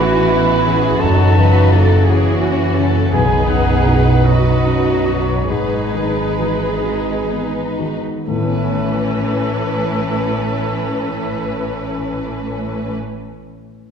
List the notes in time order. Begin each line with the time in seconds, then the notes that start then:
Already playing: A1 A2 E3 B3 C#4 D#4 E4 F#4 B4
0.30 B3 E4
0.66 E3 C#4 E4 G#4
1.01 F#1 F#2 F#3 D#4 A4 A5
1.36 C#3 E3 F#3 B4
1.71 E3 F#4 A4
2.06 C#4 E4 F#4 G#4
2.41 C#4 F#4
2.77 C#3 E4 F#4 A4
3.13 B1 B2 B3 D#4 G#4 B4 G#5
3.49 F#2 D#4 F#5
3.87 D#4 E4 F#4
4.25 F#3 D#4 F#4 D#5
4.66 C#4
5.06 F#3 D#4 F#4 C#5
5.49 G#1 G#2 G#3 D#4 G#4 B4
5.94 D#3 D#4
6.38 E3 D#4 F#4
6.83 D#4 F#4
7.29 B3
7.78 D#3 D#4 F#4
8.26 A1 A2 E3 C#4 A4 B4
8.35 A3
8.42 B3
8.49 C#4
8.56 E4
8.63 C#5